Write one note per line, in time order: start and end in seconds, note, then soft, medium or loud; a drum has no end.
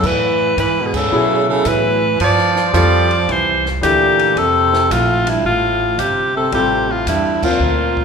0.03 0.56 A2 medium
0.03 0.57 E3 medium
0.03 0.59 B4 loud
0.03 kick medium
0.03 crash medium
0.57 1.10 G#2 medium
0.57 0.83 E3 medium
0.57 0.87 B4 medium
0.57 kick soft
0.57 hi-hat pedal medium
0.57 ride medium
0.82 0.96 B2 medium
0.86 0.98 G#4 medium
0.94 1.48 C#3 medium
0.94 1.49 A4 medium
0.94 kick medium
0.94 crash medium
1.11 1.64 B2 medium
1.11 1.95 F#3 medium
1.11 1.95 B3 medium
1.11 1.95 E4 medium
1.11 1.95 G#4 medium
1.49 1.68 C#3 medium
1.49 1.69 A4 medium
1.65 2.18 A2 loud
1.65 2.20 E3 medium
1.65 2.21 B4 loud
1.65 kick soft
1.65 hi-hat pedal medium
1.65 ride medium
2.20 2.72 G2 medium
2.20 2.71 F3 medium
2.20 kick soft
2.20 ride medium
2.24 2.72 D5 loud
2.38 snare soft
2.56 snare soft
2.73 3.26 F2 medium
2.73 3.31 F3 loud
2.73 3.06 G3 medium
2.73 3.07 C4 medium
2.73 3.07 F4 medium
2.73 3.07 A4 medium
2.73 kick soft
2.73 hi-hat pedal medium
2.73 ride medium
2.77 3.33 D5 loud
3.11 ride soft
3.28 3.80 C2 medium
3.28 3.65 E3 medium
3.28 3.66 C5 loud
3.28 kick soft
3.28 ride medium
3.66 snare soft
3.81 4.35 D2 medium
3.81 4.39 A#2 medium
3.81 4.36 E3 medium
3.81 4.36 A3 medium
3.81 4.36 D4 medium
3.81 4.36 G4 medium
3.81 4.39 G4 loud
3.81 kick soft
3.81 hi-hat pedal medium
3.81 ride medium
4.19 ride medium
4.36 4.88 F2 medium
4.36 4.93 C3 loud
4.36 4.94 A4 loud
4.36 kick soft
4.36 ride medium
4.73 snare soft
4.90 5.42 A#1 medium
4.90 5.30 A2 medium
4.90 5.31 F4 medium
4.90 kick soft
4.90 hi-hat pedal medium
4.90 ride medium
5.27 5.45 G2 medium
5.27 5.45 E4 medium
5.27 ride medium
5.44 5.96 A1 medium
5.44 6.01 F4 loud
5.44 kick soft
5.48 6.00 A2 medium
5.98 6.50 G1 medium
5.98 6.35 C3 medium
5.98 6.35 G4 loud
5.98 kick soft
5.98 hi-hat pedal medium
5.98 ride medium
6.35 6.51 C3 medium
6.35 6.52 A4 medium
6.52 7.04 A1 medium
6.52 6.90 C3 medium
6.52 6.85 G3 medium
6.52 6.85 C4 medium
6.52 6.85 F4 soft
6.52 6.93 G4 medium
6.52 6.86 A4 medium
6.52 kick soft
6.52 ride medium
6.89 7.06 A2 medium
6.89 7.08 F4 medium
7.06 7.59 E2 medium
7.06 7.47 G2 medium
7.06 7.46 E4 medium
7.06 kick soft
7.06 hi-hat pedal medium
7.06 ride medium
7.43 8.05 A#2 medium
7.43 8.05 C4 medium
7.43 8.05 F4 medium
7.43 8.05 A#4 medium
7.43 8.05 C5 medium
7.43 kick medium
7.43 crash medium
7.59 8.05 D2 medium
7.97 kick medium